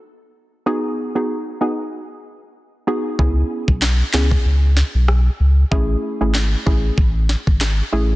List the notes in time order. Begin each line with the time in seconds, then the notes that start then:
0.66 B3 D#4 F#4 G#4
1.15 B3 D#4 F#4 G#4
1.61 B3 D#4 F#4 G#4
2.87 B3 D#4 F#4 G#4
3.19 C#2 B3 C#4 E4 G#4, kick
3.68 B1, kick
3.82 snare, clap
4.14 C#2 B3 C#4 E4 G#4, snare, clap
4.31 kick
4.45 C#2
4.77 snare
4.95 B1
5.08 cross-stick
5.40 C#2
5.71 A1 A3 C#4 E4 G#4, kick
6.21 G#1 A3 C#4 E4 G#4
6.35 snare, clap
6.66 A1 A3 C#4 E4 G#4, kick
6.98 A1, kick
7.29 snare
7.47 G#1, kick
7.61 cross-stick, snare, clap
7.92 A1 A3 C#4 E4 G#4